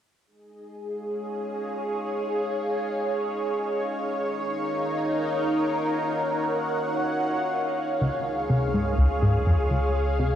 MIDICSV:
0, 0, Header, 1, 5, 480
1, 0, Start_track
1, 0, Tempo, 483871
1, 267, Time_signature, 4, 2, 24, 8
1, 10271, End_track
2, 0, Start_track
2, 0, Title_t, "Analog synth pad"
2, 0, Program_c, 0, 89
2, 266, Note_on_c, 0, 68, 76
2, 754, Note_on_c, 0, 77, 72
2, 924, Note_on_c, 0, 73, 85
2, 4107, Note_on_c, 0, 63, 85
2, 4351, Note_on_c, 0, 70, 67
2, 5409, Note_off_c, 0, 68, 0
2, 5712, Note_on_c, 0, 78, 81
2, 7948, Note_off_c, 0, 78, 0
2, 7950, Note_on_c, 0, 68, 82
2, 8669, Note_off_c, 0, 63, 0
2, 8817, Note_off_c, 0, 70, 0
2, 10271, Note_off_c, 0, 68, 0
2, 10271, Note_off_c, 0, 73, 0
2, 10271, Note_off_c, 0, 77, 0
2, 10271, End_track
3, 0, Start_track
3, 0, Title_t, "Synth texture"
3, 0, Program_c, 1, 99
3, 266, Note_on_c, 1, 63, 76
3, 267, Note_on_c, 1, 75, 72
3, 7956, Note_off_c, 1, 63, 0
3, 7957, Note_off_c, 1, 75, 0
3, 10271, End_track
4, 0, Start_track
4, 0, Title_t, "Analog synth bass"
4, 0, Program_c, 2, 38
4, 7947, Note_on_c, 2, 37, 74
4, 8040, Note_off_c, 2, 37, 0
4, 8428, Note_on_c, 2, 48, 72
4, 8655, Note_off_c, 2, 48, 0
4, 8669, Note_on_c, 2, 44, 72
4, 8896, Note_off_c, 2, 44, 0
4, 8907, Note_on_c, 2, 37, 94
4, 9000, Note_off_c, 2, 37, 0
4, 9148, Note_on_c, 2, 44, 75
4, 9302, Note_off_c, 2, 44, 0
4, 9387, Note_on_c, 2, 41, 70
4, 9480, Note_off_c, 2, 41, 0
4, 9627, Note_on_c, 2, 37, 72
4, 9720, Note_off_c, 2, 37, 0
4, 10109, Note_on_c, 2, 48, 72
4, 10271, Note_off_c, 2, 48, 0
4, 10271, End_track
5, 0, Start_track
5, 0, Title_t, "Sub bass"
5, 0, Program_c, 3, 38
5, 7947, Note_on_c, 3, 37, 84
5, 10271, Note_off_c, 3, 37, 0
5, 10271, End_track
0, 0, End_of_file